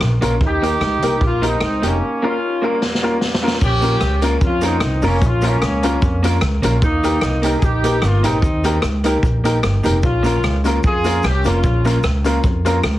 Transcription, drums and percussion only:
0.01 cross-stick
0.22 closed hi-hat
0.41 kick
0.63 closed hi-hat
0.81 cross-stick
1.02 closed hi-hat
1.21 kick
1.43 closed hi-hat
1.61 cross-stick
1.83 closed hi-hat
2.82 snare
2.95 snare
3.21 snare
3.34 snare
3.48 snare
3.61 kick, crash, cabasa
3.82 closed hi-hat, cabasa
4.01 cross-stick, cabasa
4.22 closed hi-hat, cabasa
4.41 kick, cabasa
4.61 closed hi-hat, cabasa
4.80 cross-stick, cabasa
5.02 open hi-hat, cabasa
5.21 kick, hi-hat pedal, cabasa
5.42 closed hi-hat, cabasa
5.62 cross-stick, cabasa
5.83 closed hi-hat, cabasa
6.02 kick, cabasa
6.24 closed hi-hat, cabasa
6.41 cross-stick, cabasa
6.63 closed hi-hat, cabasa
6.82 kick, cabasa
7.04 closed hi-hat, cabasa
7.21 cross-stick, cabasa
7.43 closed hi-hat, cabasa
7.62 kick, cabasa
7.84 closed hi-hat, cabasa
8.02 cross-stick, cabasa
8.24 closed hi-hat, cabasa
8.43 kick, cabasa
8.64 closed hi-hat, cabasa
8.82 cross-stick, cabasa
9.04 closed hi-hat, cabasa
9.23 kick, cabasa
9.45 closed hi-hat, cabasa
9.63 cross-stick, cabasa
9.83 closed hi-hat, cabasa
10.03 kick, cabasa
10.24 closed hi-hat, cabasa
10.43 cross-stick, cabasa
10.64 closed hi-hat, cabasa
10.83 kick, cabasa
11.04 closed hi-hat, cabasa
11.23 cross-stick, cabasa
11.44 closed hi-hat, cabasa
11.63 kick, cabasa
11.85 closed hi-hat, cabasa
12.03 cross-stick, cabasa
12.25 closed hi-hat, cabasa
12.43 kick, cabasa
12.66 closed hi-hat, cabasa
12.83 cross-stick, cabasa

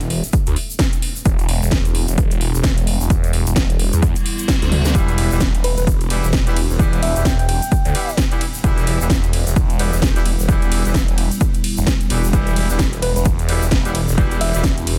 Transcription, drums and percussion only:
0.01 closed hi-hat, shaker
0.10 open hi-hat
0.24 closed hi-hat, shaker
0.32 kick, closed hi-hat, shaker
0.46 closed hi-hat, shaker
0.56 open hi-hat
0.70 shaker
0.79 kick, snare, closed hi-hat, shaker
0.93 closed hi-hat, shaker
1.02 open hi-hat
1.16 shaker
1.25 kick, closed hi-hat, shaker
1.39 closed hi-hat, shaker
1.49 open hi-hat
1.63 shaker
1.71 kick, snare, closed hi-hat, shaker
1.85 closed hi-hat, shaker
1.95 open hi-hat
2.08 closed hi-hat, shaker
2.18 kick, closed hi-hat, shaker
2.31 closed hi-hat, shaker
2.41 open hi-hat
2.55 shaker
2.63 kick, snare, closed hi-hat, shaker
2.78 closed hi-hat, shaker
2.87 open hi-hat
3.00 shaker
3.10 kick, closed hi-hat, shaker
3.24 closed hi-hat, shaker
3.33 open hi-hat
3.47 closed hi-hat, shaker
3.56 kick, snare, closed hi-hat, shaker
3.70 closed hi-hat, shaker
3.79 open hi-hat
3.93 closed hi-hat, shaker
4.02 kick, closed hi-hat, shaker
4.15 closed hi-hat, shaker
4.26 open hi-hat
4.39 closed hi-hat, shaker
4.48 kick, snare, closed hi-hat, shaker
4.62 snare, closed hi-hat, shaker
4.72 open hi-hat, mid tom
4.85 snare, closed hi-hat, shaker
4.95 kick, closed hi-hat, shaker
5.08 closed hi-hat, shaker
5.18 open hi-hat, ride
5.31 shaker
5.40 kick, snare, closed hi-hat, shaker
5.55 closed hi-hat, shaker
5.64 open hi-hat, ride
5.77 closed hi-hat, shaker
5.87 kick, closed hi-hat, shaker
6.01 closed hi-hat, shaker
6.10 open hi-hat, ride
6.24 shaker
6.33 kick, snare, closed hi-hat, shaker
6.47 closed hi-hat, shaker
6.56 open hi-hat, ride
6.70 shaker
6.79 kick, closed hi-hat, shaker
6.93 closed hi-hat, shaker
7.03 open hi-hat, ride
7.16 closed hi-hat, shaker
7.25 kick, snare, closed hi-hat, shaker
7.39 closed hi-hat, shaker
7.49 open hi-hat, ride
7.62 closed hi-hat, shaker
7.72 kick, closed hi-hat, shaker
7.85 closed hi-hat, shaker
7.95 open hi-hat, ride
8.09 shaker
8.17 kick, snare, closed hi-hat, shaker
8.31 closed hi-hat, shaker
8.41 open hi-hat, ride
8.54 shaker
8.64 kick, closed hi-hat, shaker
8.78 closed hi-hat, shaker
8.87 open hi-hat, ride
9.01 shaker
9.10 kick, snare, closed hi-hat, shaker
9.23 closed hi-hat, shaker
9.33 open hi-hat, ride
9.47 closed hi-hat, shaker
9.56 kick, closed hi-hat, shaker
9.70 closed hi-hat, shaker
9.79 open hi-hat, ride
9.93 shaker
10.02 kick, snare, closed hi-hat, shaker
10.16 closed hi-hat, shaker
10.26 open hi-hat, ride
10.39 shaker
10.49 kick, closed hi-hat, shaker
10.62 closed hi-hat, shaker
10.72 open hi-hat, ride
10.85 closed hi-hat, shaker
10.94 kick, snare, closed hi-hat, shaker
11.08 closed hi-hat, shaker
11.18 open hi-hat, ride
11.31 closed hi-hat, shaker
11.40 kick, closed hi-hat, shaker
11.54 closed hi-hat, shaker
11.64 open hi-hat, ride
11.77 shaker
11.87 kick, snare, closed hi-hat, shaker
12.01 closed hi-hat, shaker
12.10 open hi-hat, ride
12.24 shaker
12.33 kick, closed hi-hat, shaker
12.47 closed hi-hat, shaker
12.56 open hi-hat, ride
12.69 shaker
12.79 kick, snare, closed hi-hat, shaker
12.93 closed hi-hat, shaker
13.02 open hi-hat, ride
13.16 closed hi-hat, shaker
13.25 kick, closed hi-hat, shaker
13.39 closed hi-hat, shaker
13.49 open hi-hat, ride
13.62 shaker
13.71 kick, snare, closed hi-hat
13.85 closed hi-hat, shaker
13.95 open hi-hat, ride
14.08 shaker
14.18 kick, closed hi-hat
14.31 closed hi-hat, shaker
14.41 open hi-hat, ride
14.54 closed hi-hat, shaker
14.64 kick, snare, closed hi-hat, shaker
14.78 closed hi-hat, shaker
14.87 open hi-hat, ride

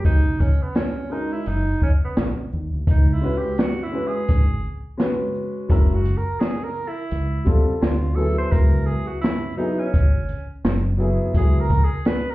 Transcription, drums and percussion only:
0.05 kick, closed hi-hat
0.40 kick, closed hi-hat, shaker
0.75 snare, closed hi-hat
1.11 shaker
1.46 closed hi-hat
1.81 kick, shaker
2.17 snare, closed hi-hat
2.52 shaker
2.87 kick, closed hi-hat
3.23 shaker
3.58 snare, closed hi-hat
3.93 shaker
4.28 kick, closed hi-hat
4.64 shaker
4.99 snare, closed hi-hat
5.34 shaker
5.70 kick, closed hi-hat
6.05 closed hi-hat, shaker
6.40 snare, closed hi-hat
6.76 shaker
7.11 closed hi-hat
7.46 kick, closed hi-hat, shaker
7.82 snare, closed hi-hat
8.17 shaker
8.52 kick, closed hi-hat
8.88 shaker
9.23 snare, closed hi-hat
9.59 shaker
9.94 kick, closed hi-hat
10.29 closed hi-hat, shaker
10.65 snare, closed hi-hat
11.00 shaker
11.34 kick, closed hi-hat
11.70 kick, closed hi-hat, shaker
12.05 snare, closed hi-hat

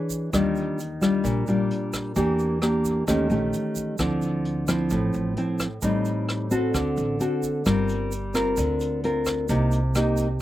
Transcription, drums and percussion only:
0.10 kick, closed hi-hat, shaker
0.33 kick, cross-stick, closed hi-hat, shaker
0.56 closed hi-hat, shaker
0.79 closed hi-hat, shaker
1.02 kick, cross-stick, closed hi-hat, shaker
1.25 kick, closed hi-hat, shaker
1.47 closed hi-hat, shaker
1.71 closed hi-hat
1.93 kick, cross-stick, closed hi-hat, shaker
2.16 kick, closed hi-hat, shaker
2.39 closed hi-hat, shaker
2.62 cross-stick, closed hi-hat, shaker
2.85 kick, closed hi-hat, shaker
3.08 kick, cross-stick, closed hi-hat, shaker
3.30 closed hi-hat, shaker
3.53 closed hi-hat, shaker
3.76 kick, closed hi-hat, shaker
3.98 kick, cross-stick, closed hi-hat, shaker
4.22 closed hi-hat, shaker
4.45 closed hi-hat
4.67 kick, cross-stick, closed hi-hat, shaker
4.90 kick, closed hi-hat, shaker
5.13 closed hi-hat, shaker
5.37 closed hi-hat
5.59 kick, cross-stick, closed hi-hat, shaker
5.82 kick, closed hi-hat, shaker
6.05 closed hi-hat, shaker
6.29 cross-stick, closed hi-hat
6.51 kick, closed hi-hat, shaker
6.74 kick, cross-stick, closed hi-hat, shaker
6.97 closed hi-hat, shaker
7.20 closed hi-hat, shaker
7.43 kick, closed hi-hat, shaker
7.65 kick, cross-stick, closed hi-hat, shaker
7.89 closed hi-hat, shaker
8.12 closed hi-hat, shaker
8.34 kick, cross-stick, closed hi-hat, shaker
8.57 kick, closed hi-hat, shaker
8.80 closed hi-hat, shaker
9.03 closed hi-hat
9.25 kick, cross-stick, closed hi-hat, shaker
9.49 kick, closed hi-hat, shaker
9.72 closed hi-hat, shaker
9.95 cross-stick, closed hi-hat, shaker
10.17 kick, closed hi-hat, shaker

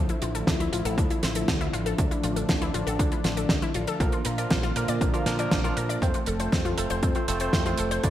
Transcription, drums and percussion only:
0.09 closed hi-hat
0.22 closed hi-hat
0.35 closed hi-hat
0.47 kick, snare, closed hi-hat
0.60 closed hi-hat
0.73 closed hi-hat
0.85 closed hi-hat
0.98 kick, closed hi-hat
1.10 closed hi-hat
1.23 snare, closed hi-hat
1.35 closed hi-hat
1.48 kick, snare, closed hi-hat
1.61 closed hi-hat
1.74 closed hi-hat
1.86 closed hi-hat
1.98 kick, closed hi-hat
2.11 closed hi-hat
2.23 closed hi-hat
2.36 closed hi-hat
2.49 kick, snare, closed hi-hat
2.62 closed hi-hat
2.74 closed hi-hat
2.87 closed hi-hat
2.99 kick, closed hi-hat
3.12 closed hi-hat
3.24 snare, closed hi-hat
3.37 closed hi-hat
3.49 kick, snare, closed hi-hat
3.62 closed hi-hat
3.74 closed hi-hat
3.87 closed hi-hat
4.00 kick, closed hi-hat
4.12 closed hi-hat
4.25 closed hi-hat
4.38 closed hi-hat
4.50 kick, snare, closed hi-hat
4.63 closed hi-hat
4.76 closed hi-hat
4.88 closed hi-hat
5.01 kick, closed hi-hat
5.14 closed hi-hat
5.26 snare, closed hi-hat
5.39 closed hi-hat
5.51 kick, snare, closed hi-hat
5.64 closed hi-hat
5.77 closed hi-hat
5.90 closed hi-hat
6.02 kick, closed hi-hat
6.14 closed hi-hat
6.26 closed hi-hat
6.40 closed hi-hat
6.52 kick, snare, closed hi-hat
6.65 closed hi-hat
6.78 closed hi-hat
6.90 closed hi-hat
7.03 kick, closed hi-hat
7.15 closed hi-hat
7.28 closed hi-hat
7.40 closed hi-hat
7.53 kick, snare, closed hi-hat
7.66 closed hi-hat
7.78 closed hi-hat
7.91 closed hi-hat
8.03 kick, closed hi-hat

